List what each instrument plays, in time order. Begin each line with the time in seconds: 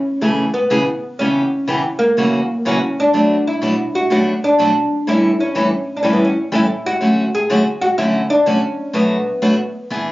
Already playing: oud C#4
0.21 steel-string acoustic guitar A2 C#3 E3 A3 C#4 G#4, oud A3
0.54 oud B3
0.70 steel-string acoustic guitar A2 C#3 E3 A3 C#4 G#4
1.19 steel-string acoustic guitar C#3 E3 B3 C#4 G4, oud C#4
1.67 steel-string acoustic guitar C#3 E3 B3 C#4 G4
1.99 oud A#3
2.17 steel-string acoustic guitar F#2 C#3 E3 A#3 C#4 F#4
2.65 steel-string acoustic guitar F#2 C#3 E3 A#3 C#4 F#4, oud C#4
3.00 oud D4
3.13 steel-string acoustic guitar B2 F#3 A3 D4 F#4
3.47 oud E4
3.61 steel-string acoustic guitar B2 F#3 A3 D4 F#4
3.95 oud F#4
4.10 steel-string acoustic guitar B2 F#3 A3 D4 F#4, oud F#4
4.44 oud D4
4.59 steel-string acoustic guitar B2 F#3 A3 D4 F#4
5.07 steel-string acoustic guitar A2 E3 G3 C#4 E4 A4, oud E4
5.40 oud C#4
5.55 steel-string acoustic guitar A2 E3 G3 C#4 E4 A4
5.97 oud D4
6.03 steel-string acoustic guitar A2 E3 G3 C#4 E4 A4, oud C#4
6.13 oud B3
6.25 oud C#4
6.52 steel-string acoustic guitar A2 E3 G3 C#4 E4 A4, oud E4
6.86 oud F#4
7.01 steel-string acoustic guitar D3 F#3 A3 C#4 F#4
7.35 oud G#4
7.50 steel-string acoustic guitar D3 F#3 A3 C#4 F#4
7.81 oud F#4
7.98 steel-string acoustic guitar D3 F#3 A3 C#4 F#4, oud E4
8.30 oud D4
8.46 steel-string acoustic guitar D3 F#3 A3 C#4 F#4, oud C#4
8.93 steel-string acoustic guitar B2 F#3 A3 D4 F#4, oud B3
9.42 steel-string acoustic guitar B2 F#3 A3 D4 F#4
9.90 steel-string acoustic guitar E3 B3 D4 G#4